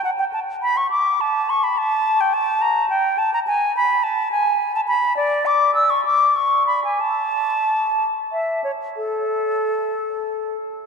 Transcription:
X:1
M:12/8
L:1/16
Q:3/8=68
K:Amix
V:1 name="Flute"
f g a2 b c' d'2 a2 c' b a3 g a2 _b2 g2 a b | [K:A] g2 b2 a2 g3 a b2 d2 d'2 e' c' d'2 c'2 b g | a8 e2 c2 A8- A2 z2 |]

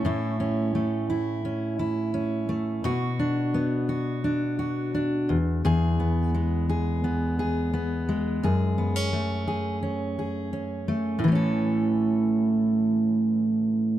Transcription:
X:1
M:4/4
L:1/16
Q:1/4=86
K:A
V:1 name="Steel-string acoustic guitar"
[A,,E]2 C2 A,2 E2 C2 E2 C2 A,2 | [B,,F]2 D2 B,2 F2 D2 F2 D2 E,,2 | [E,,G]2 B,2 G,2 G2 B,2 G2 B,2 G,2 | [F,,G]2 B, C A,2 G2 C2 G2 C2 A,2 |
[A,,E,A,CA]16 |]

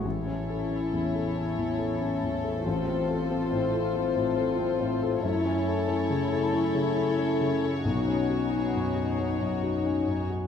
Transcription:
X:1
M:6/8
L:1/16
Q:3/8=46
K:Alyd
V:1 name="Violin section"
c12 | =c12 | c12- | c8- c3 z |]
V:2 name="Violin section"
A12- | A12 | A12 | F8- F3 z |]
V:3 name="Viola section"
E12 | =F12 | E12 | D8- D3 z |]
V:4 name="French horn section"
[CE]12 | [=C=F]12 | [A,E]12 | [CD]8- [CD]2 z2 |]
V:5 name="Grand piano"
A,,, C A C E,, A C E,, A C E,, A | A,,, =C A C A,, A C A,, A C A,, A | F,, C A C C, A C C, A C C, A | B,,, C F C F,, F C F,, F C F,, F |]
V:6 name="Cello section" clef=bass
A,,12- | A,,12 | F,,12 | B,,8- B,,3 z |]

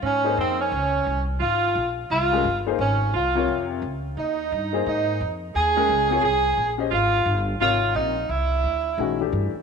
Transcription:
X:1
M:4/4
L:1/8
Q:"Swing" 1/4=174
K:Dblyd
V:1 name="Upright piano"
z [B,EAc]3 z4 | z4 z [A,DGB] z [B,EAc] | z3 [C,FBd]3 z2 | z3 [B,EAc]3 z2 |
z [A,DBg]2 [CFBd] z3 [DGce] | z4 [C,FBd]3 z | z4 [E,A,D_G] [=E,=A,=D=G]2 z |]
V:2 name="Alto saxophone"
D2 C D4 z | F3 z F3 z | D2 F3 z3 | E4 E3 z |
A4 A3 z | F3 z F2 E2 | =E6 z2 |]
V:3 name="Tenor saxophone"
D2 C D4 z | F3 z F3 z | D2 F3 z3 | E4 E3 z |
A4 A3 z | F3 z F2 E2 | =E6 z2 |]
V:4 name="Upright bass" clef=bass
A,,2 F,,2 D,,2 C,,2 | A,,,2 B,,,2 C,,2 G,,,2 | A,,,2 C,,2 F,,2 D,,2 | E,,2 G,,2 A,,2 F,,2 |
E,,2 D,,2 C,,2 B,,,2 | A,,,2 G,,,2 A,,,2 B,,,2 | C,,2 =D,,2 B,,,2 G,, z |]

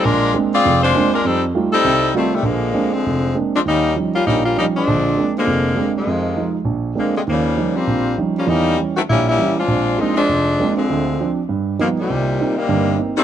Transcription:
X:1
M:4/4
L:1/8
Q:"Swing" 1/4=199
K:Fmix
V:1 name="Saxophone section"
[_A,DFB]2 z [CF_Ad]2 [A,DFc]2 [A,DFB] | [G,CEA] z2 [G,CEA]3 [E,G,A,C] [C,E,G,A,] | [K:Bbmix] [D,F,A,B,]3 [D,F,A,C]3 z [F,A,CD] | [G,B,_DE]2 z [G,B,DF] [G,B,DE] [G,B,DF] [G,B,DE] [F,A,C=D]- |
[F,A,CD]3 [D,F,A,B,]4 [C,E,F,A,]- | [C,E,F,A,]3 z3 [D,F,A,B,] [C,D,F,A,] | [_D,F,G,B,]3 [F,G,B,C]3 z [F,G,B,_D] | [G,B,^CE]2 z [E,=A,=C_G] [=G,B,^C=E] [G,B,CE]2 [_A,=CDF]- |
[A,CDF]2 [F,A,CE] [F,A,CD]4 [D,F,A,C]- | [D,F,A,C]3 z3 [=B,,^D,F,^A,] [^A,,C,D,G,]- | [^A,,C,^D,G,]3 [C,E,G,B,]3 z [E,G,=A,C] |]
V:2 name="Grand piano" clef=bass
B,,,2 [_A,B,CD] z [F,,,F,,]2 [A,B,CD] z | F,,2 [G,A,EF] z [C,,C,]2 [G,A,EF] z | [K:Bbmix] B,,,2 [A,B,CD] z F,,,2 [A,B,CD] z | E,,2 [F,G,_DE] z [B,,,B,,]2 [F,G,DE] z |
[B,,,D,]2 [A,B,CD] z [F,,,F,,]2 [A,B,CD] z | F,,2 [F,A,E] z B,,,2 [A,B,CD] z | E,,2 [F,G,_DE] z B,,,2 [F,G,DE] z | [=E,,=E,]2 [E,G,^C] z [B,,,B,,]2 [E,G,C] z |
B,,,2 [A,B,CD] z F,,,2 [A,B,CD] z | [D,,D,]2 [F,CD] z G,,2 [F,G,=B,^D] z | C,,2 [B,CE] z [G,,,G,,]2 [B,CE] z |]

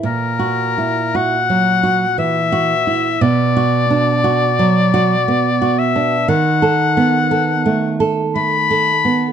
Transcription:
X:1
M:3/4
L:1/16
Q:1/4=58
K:Bm
V:1 name="Oboe"
^A4 f4 e4 | d8- d2 e2 | [K:Bphr] f6- f z b4 |]
V:2 name="Nylon-string guitar"
(3^A,,2 F2 E2 (3F2 F,2 F2 (3E,2 F2 E2 | (3B,,2 F2 D2 (3F2 F,2 F2 (3B,2 F2 D2 | [K:Bphr] (3^D,2 A2 B,2 (3A2 A,2 A2 (3A,2 A2 B,2 |]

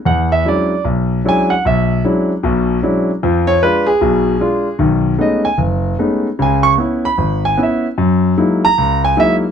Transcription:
X:1
M:4/4
L:1/8
Q:"Swing" 1/4=151
K:E
V:1 name="Grand piano"
f e =d2 z2 g f | e2 z6 | z c _c _A4- A | z2 d g z4 |
g c' z b2 g e z | z3 ^a2 g e z |]
V:2 name="Grand piano"
E,,2 [F,G,C=DE] z B,,,2 [F,G,CDE] z | B,,,2 [F,G,C=DE] z [B,,,B,,]2 [F,G,CDE] z | [=F,,=F,]2 [_A,=D=F] z [_C,,_C,]2 [A,DF] z | [B,,,D,]2 [G,A,B,CD] z F,,,2 [G,A,B,CD] z |
[C,,C,]2 [B,CE] z G,,,2 [B,CE] z | F,,2 [F,G,^A,DE] z C,,2 [F,G,A,DE] z |]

